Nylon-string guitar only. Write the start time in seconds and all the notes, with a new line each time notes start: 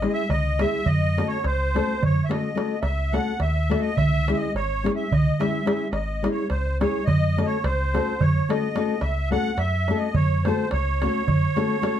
0.02 G#3 C#4 E4 G#4
0.59 G#3 C#4 E4 G#4
1.17 A3 C#4 F#4 A4
1.75 A3 C#4 F#4 A4
2.29 A3 C#4 F#4 A4
2.55 A3 C#4 F#4 A4
3.13 A3 C#4 F#4 A4
3.70 A3 C#4 F#4 A4
4.28 G#3 C#4 E4 G#4
4.84 G#3 C#4 E4 G#4
5.39 G#3 C#4 E4 G#4
5.65 G#3 C#4 E4 G#4
6.22 G#3 C#4 E4 G#4
6.80 G#3 C#4 E4 G#4
7.37 A3 C#4 F#4 A4
7.94 A3 C#4 F#4 A4
8.49 A3 C#4 F#4 A4
8.75 A3 C#4 F#4 A4
9.31 A3 C#4 F#4 A4
9.89 A3 C#4 F#4 A4
10.46 A3 C#4 F#4 A4
11.02 A3 C#4 F#4 A4
11.56 A3 C#4 F#4 A4
11.82 A3 C#4 F#4 A4